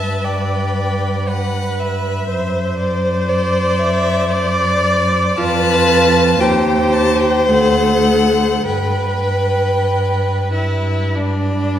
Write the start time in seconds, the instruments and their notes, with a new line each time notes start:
Already playing: cello G2, violin B4 A5, viola E5
0.24 viola D5, violin G5
1.28 viola B4, violin F#5
1.80 violin E5
2.29 cello F#2, viola C5, violin C5
2.78 violin D5
3.29 violin C5, viola D5
3.79 violin E5
4.29 viola D5, violin D5
5.38 cello F2, viola F4, violin B4 A5
6.39 cello D#2, viola G4, violin C5 G5
6.93 violin A5
7.20 violin G5
7.47 cello D2, viola A4, violin F#5
8.66 cello G2, violin B4 G5, viola B4
10.53 violin E4 E5
11.15 violin D4 D5